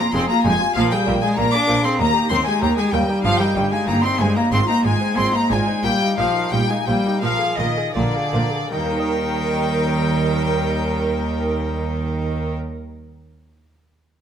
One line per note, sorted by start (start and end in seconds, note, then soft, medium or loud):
0.00 0.10 F2 medium
0.00 0.14 A#3 medium
0.00 0.14 F4 medium
0.00 0.23 F4 medium
0.00 0.14 A#5 loud
0.00 0.06 A#5 medium
0.13 0.22 F1 medium
0.13 0.41 F2 medium
0.13 0.22 F2 medium
0.13 0.29 C4 loud
0.13 0.38 G#4 medium
0.13 0.29 G#4 medium
0.13 0.29 C6 loud
0.13 0.22 C6 loud
0.29 0.45 A#3 medium
0.29 0.54 F4 medium
0.29 0.45 F4 medium
0.29 0.44 A#5 loud
0.29 0.45 A#5 loud
0.44 0.53 F1 medium
0.44 0.53 F2 medium
0.44 0.72 F2 medium
0.44 0.54 G#3 medium
0.44 0.60 G4 medium
0.44 0.61 G#4 medium
0.44 0.75 G#5 loud
0.44 0.76 G#5 loud
0.60 0.76 F4 medium
0.74 0.84 A#1 medium
0.74 1.03 A#2 medium
0.74 0.84 A#2 loud
0.74 0.94 F3 medium
0.74 0.91 A#4 medium
0.74 0.81 F5 loud
0.74 0.91 F5 loud
0.91 1.22 G3 loud
0.91 1.16 A#3 medium
0.91 1.07 G#4 medium
0.91 1.21 G5 loud
0.91 0.99 G5 loud
1.06 1.15 A#1 medium
1.06 1.34 A#2 medium
1.06 1.15 A#2 medium
1.06 1.31 D4 medium
1.06 1.23 A#4 medium
1.21 1.40 G#3 medium
1.21 1.47 A#3 medium
1.21 1.38 G#4 medium
1.21 1.37 G#5 loud
1.21 1.28 G#5 medium
1.36 1.46 A#1 loud
1.36 1.45 A#2 medium
1.36 1.65 A#2 medium
1.36 1.53 A#3 loud
1.36 1.62 D4 medium
1.36 1.53 A#4 medium
1.36 1.52 A#5 loud
1.36 1.53 A#5 loud
1.52 1.78 A#3 medium
1.52 1.86 D4 loud
1.52 1.69 G#4 medium
1.52 1.83 D6 loud
1.52 1.84 D6 medium
1.68 1.77 A#1 medium
1.68 1.76 A#2 medium
1.68 1.97 A#2 medium
1.68 1.84 C4 medium
1.68 1.85 A#4 medium
1.84 2.00 A#3 medium
1.84 2.02 C4 loud
1.84 2.00 G#4 medium
1.84 2.00 C6 loud
1.84 1.90 C6 medium
1.99 2.27 D#2 medium
1.99 2.07 D#2 medium
1.99 2.08 D#2 medium
1.99 2.31 A#3 medium
1.99 2.14 A#4 medium
1.99 2.30 A#5 loud
2.15 2.40 D#4 medium
2.15 2.31 G4 medium
2.29 2.59 D#2 medium
2.29 2.39 D#2 medium
2.29 2.46 C4 medium
2.29 2.56 G4 medium
2.29 2.46 A#4 medium
2.29 2.36 C6 loud
2.29 2.46 C6 loud
2.45 2.63 G#3 medium
2.45 2.71 D#4 medium
2.45 2.62 G4 medium
2.45 2.61 G#5 loud
2.45 2.62 G#5 medium
2.61 2.90 D#2 medium
2.61 2.70 D#2 medium
2.61 2.77 A#3 loud
2.61 2.86 G4 medium
2.61 2.77 A#4 medium
2.61 2.77 A#5 loud
2.61 2.68 A#5 medium
2.77 2.94 G#3 loud
2.77 2.93 D#4 medium
2.77 2.94 G4 medium
2.77 2.92 G#5 loud
2.77 2.84 G#5 medium
2.92 3.01 D#2 medium
2.92 3.21 D#2 medium
2.92 3.26 G3 loud
2.92 3.09 F4 medium
2.92 3.09 A#4 medium
2.92 3.24 G5 loud
2.92 3.01 G5 loud
3.09 3.24 D#4 medium
3.09 3.24 G4 medium
3.23 3.32 G1 medium
3.23 3.53 G2 medium
3.23 3.32 G2 loud
3.23 3.41 F3 loud
3.23 3.39 G4 medium
3.23 3.39 F5 loud
3.23 3.40 F5 loud
3.39 3.72 G3 medium
3.39 3.65 A#3 medium
3.39 3.56 D#4 medium
3.39 3.71 G5 loud
3.39 3.72 G5 medium
3.55 3.64 G1 medium
3.55 3.84 G2 medium
3.55 3.64 G2 loud
3.55 3.81 D#4 medium
3.55 3.72 G4 medium
3.71 3.89 G#3 medium
3.71 3.97 A#3 medium
3.71 3.88 D#4 medium
3.71 3.88 G#5 medium
3.71 3.87 G#5 loud
3.87 3.96 G1 medium
3.87 3.95 G2 medium
3.87 4.16 G2 medium
3.87 4.05 A#3 loud
3.87 4.13 D#4 medium
3.87 4.03 G4 medium
3.87 3.94 A#5 loud
3.87 4.04 A#5 loud
4.03 4.30 A#3 medium
4.03 4.22 C4 medium
4.03 4.20 D#4 medium
4.03 4.19 C6 loud
4.03 4.20 C6 medium
4.19 4.27 G1 medium
4.19 4.27 G2 medium
4.19 4.49 G2 medium
4.19 4.38 G#3 loud
4.19 4.36 C4 medium
4.19 4.37 G4 medium
4.19 4.36 G#5 loud
4.19 4.36 G#5 medium
4.36 4.52 A#3 medium
4.36 4.53 D#4 medium
4.36 4.42 A#5 medium
4.36 4.52 A#5 medium
4.51 4.59 G#1 medium
4.51 4.81 G#2 medium
4.51 4.60 G#2 medium
4.51 4.59 C4 medium
4.51 4.68 F4 medium
4.51 4.58 C6 loud
4.51 4.69 C6 loud
4.68 4.86 A#3 medium
4.68 4.94 C4 medium
4.68 4.85 D#4 medium
4.68 4.84 A#5 loud
4.68 4.85 A#5 medium
4.84 4.92 G#1 medium
4.84 5.14 G#2 medium
4.84 4.93 G#2 medium
4.84 5.18 G#3 medium
4.84 5.11 D#4 medium
4.84 5.01 F4 medium
4.84 5.17 G#5 loud
5.01 5.27 C4 medium
5.01 5.17 D#4 medium
5.17 5.25 G#1 medium
5.17 5.25 G#2 medium
5.17 5.47 G#2 medium
5.17 5.35 C4 medium
5.17 5.44 D#4 medium
5.17 5.33 F4 medium
5.17 5.34 C6 loud
5.34 5.52 A#3 medium
5.34 5.61 C4 medium
5.34 5.51 D#4 medium
5.34 5.50 A#5 loud
5.34 5.51 A#5 medium
5.50 5.58 G#1 medium
5.50 5.58 G#2 medium
5.50 5.81 G#2 medium
5.50 5.85 G#3 medium
5.50 5.68 D4 medium
5.50 5.68 F4 medium
5.50 5.59 G#5 loud
5.50 5.84 G#5 loud
5.68 5.84 C4 medium
5.68 5.85 D#4 medium
5.84 5.92 A#1 medium
5.84 5.92 A#2 medium
5.84 6.15 A#2 medium
5.84 6.18 G3 loud
5.84 6.00 G4 medium
5.84 6.17 G5 loud
5.84 5.93 G5 loud
6.01 6.28 A#3 soft
6.01 6.18 D#4 medium
6.18 6.26 A#1 medium
6.18 6.49 A#2 medium
6.18 6.26 A#2 medium
6.18 6.54 F3 medium
6.18 6.45 D#4 medium
6.18 6.35 G4 medium
6.18 6.51 F5 medium
6.18 6.51 F5 loud
6.35 6.63 A#3 medium
6.35 6.53 D#4 medium
6.51 6.60 A#1 medium
6.51 6.83 A#2 medium
6.51 6.60 A#2 medium
6.51 6.68 G3 medium
6.51 6.80 D#4 medium
6.51 6.69 G4 medium
6.51 6.69 G5 loud
6.51 6.69 G5 medium
6.69 6.76 G#3 medium
6.69 6.98 A#3 medium
6.69 6.88 D#4 medium
6.69 6.87 G#5 loud
6.69 6.87 G#5 medium
6.86 6.95 A#1 medium
6.86 6.95 A#2 medium
6.86 7.19 A#2 medium
6.86 7.24 G3 medium
6.86 7.05 C4 medium
6.86 7.05 G4 medium
6.86 7.22 G5 loud
6.86 6.95 G5 medium
7.05 7.23 A#3 medium
7.05 7.23 D#4 medium
7.20 7.30 A#1 medium
7.20 7.31 A#2 medium
7.20 7.55 A#2 medium
7.20 7.59 F3 medium
7.20 7.40 A#4 medium
7.20 7.57 F5 loud
7.20 7.58 F5 loud
7.40 7.70 A#3 medium
7.40 7.59 G#4 medium
7.57 7.66 A#1 medium
7.57 7.92 A#2 medium
7.57 7.67 A#2 medium
7.57 7.94 D#3 medium
7.57 7.88 F4 medium
7.57 7.77 A#4 medium
7.57 7.94 D#5 loud
7.57 7.95 D#5 medium
7.77 8.07 A#3 medium
7.77 7.96 G#4 medium
7.94 8.04 A#1 medium
7.94 8.30 A#2 medium
7.94 8.03 A#2 medium
7.94 8.70 D3 medium
7.94 8.26 F4 medium
7.94 8.13 A#4 medium
7.94 8.70 D5 medium
8.14 8.45 A#3 medium
8.14 8.34 G#4 medium
8.33 8.41 A#1 medium
8.33 8.41 A#2 medium
8.33 8.68 A#2 medium
8.33 8.52 C4 medium
8.33 8.53 A#4 medium
8.53 8.72 A#3 medium
8.53 8.72 G#4 medium
8.70 12.54 D#2 medium
8.70 12.54 D#3 loud
8.70 13.24 D#3 medium
8.70 12.54 G3 medium
8.70 12.54 A#4 medium
8.70 12.53 G5 loud
8.79 13.27 A#3 medium
8.86 13.31 D#4 medium
8.93 8.99 A#4 medium
9.00 13.38 D#5 medium